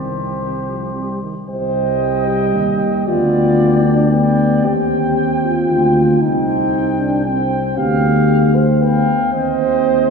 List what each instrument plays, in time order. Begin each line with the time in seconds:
Already playing: tuba C2, trombone D#3, french horn C4, flugelhorn G4, trumpet C5
0.40 trombone D#3
0.67 trombone F3
0.95 trombone G3
1.23 trombone D#3
1.49 tuba C2, trombone G3, french horn C5, flugelhorn D#5, trumpet G5
2.28 french horn G4
2.54 tuba D#2
3.07 tuba D2, trombone B3, french horn F4, flugelhorn D5, trumpet G5
3.85 french horn D4
4.10 french horn B3, trombone B3, flugelhorn D5, trumpet G5
4.65 tuba D#2, trombone C4, french horn G4, trumpet G5, flugelhorn G5
5.44 french horn F4
5.70 tuba D2
6.21 tuba C2, trombone C4, french horn D#4, trumpet G5, flugelhorn G5
7.00 french horn D4
7.25 trombone C4, french horn C4, flugelhorn G5, trumpet G5
7.77 tuba D2, trombone B3, french horn G4, flugelhorn F5, trumpet G5
8.55 french horn C5
8.81 trombone B3, french horn B4, flugelhorn F5, trumpet G5
9.32 tuba D#2, trombone C4, french horn C5, flugelhorn D#5, trumpet G5